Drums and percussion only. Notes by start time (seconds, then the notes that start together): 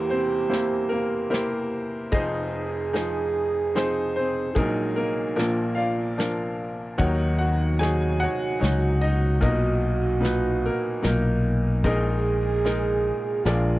0.52 snare, closed hi-hat
1.32 snare, closed hi-hat
2.13 kick, closed hi-hat
2.94 snare, closed hi-hat
3.76 snare, closed hi-hat
4.56 kick, closed hi-hat
5.38 snare, closed hi-hat
6.18 snare, closed hi-hat
6.99 kick, closed hi-hat
7.81 snare, closed hi-hat
8.62 snare, closed hi-hat
9.42 kick, closed hi-hat
10.23 snare, closed hi-hat
11.03 snare, closed hi-hat
11.84 kick, closed hi-hat
12.64 snare, closed hi-hat
13.45 snare, closed hi-hat